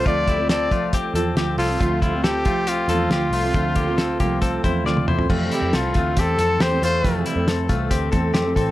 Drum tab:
CC |----------------|----------------|----------------|x---------------|
HH |x-x-x-x-x-x-x-o-|x-x-x-x-x-x-x-o-|x-x-x-x-x-x-----|--x-x-x-x-x-x-x-|
SD |----o-------o---|----o-------o---|----o-------o---|----o-------o---|
T1 |----------------|----------------|-------------o--|----------------|
T2 |----------------|----------------|--------------o-|----------------|
FT |----------------|----------------|---------------o|----------------|
BD |o-o---o-o-------|o-o---o---------|o-o---o-o-o-----|o-----o-o-------|

CC |----------------|
HH |x-x-x-x-x-x-x-x-|
SD |----o-------o---|
T1 |----------------|
T2 |----------------|
FT |----------------|
BD |o-----o-o-o---o-|